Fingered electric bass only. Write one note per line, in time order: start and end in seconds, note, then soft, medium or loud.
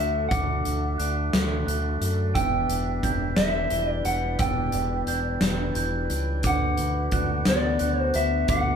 0.00 0.30 D2 medium
0.31 0.63 D2 medium
0.67 0.98 D2 medium
1.00 1.32 D2 medium
1.33 1.65 D2 medium
1.67 1.99 D2 medium
2.01 2.33 F#2 medium
2.35 2.67 E1 medium
2.69 3.01 E1 medium
3.03 3.36 E1 medium
3.37 3.69 E1 medium
3.70 4.03 E1 medium
4.05 4.37 E1 medium
4.40 4.72 E1 medium
4.73 5.06 E1 medium
5.06 5.39 E1 medium
5.41 5.73 E1 medium
5.75 6.07 E1 medium
6.10 6.44 C#2 medium
6.44 6.76 D2 medium
6.79 7.11 D2 medium
7.12 7.44 D2 medium
7.47 7.79 D2 medium
7.81 8.13 D2 medium
8.15 8.47 D2 medium
8.48 8.76 D2 medium